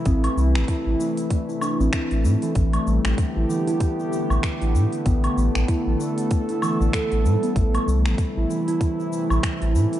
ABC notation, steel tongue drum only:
X:1
M:4/4
L:1/16
Q:"Swing 16ths" 1/4=96
K:Am
V:1 name="Steel tongue drum"
C4 E z A, z A, E D C z2 A, E, | z A, G,3 E E, E4 z2 E z2 | B,4 E z A, z A, E E, A, A z G, B, | z A, G,3 E E, E4 z2 E z2 |]